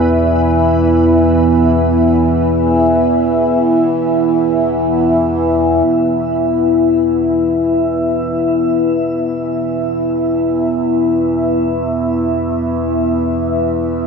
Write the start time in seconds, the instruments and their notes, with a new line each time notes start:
Already playing: synth drone E2 E3, ambient pad B3 E4 E5, synth texture B4
5.87 synth drone E2 E3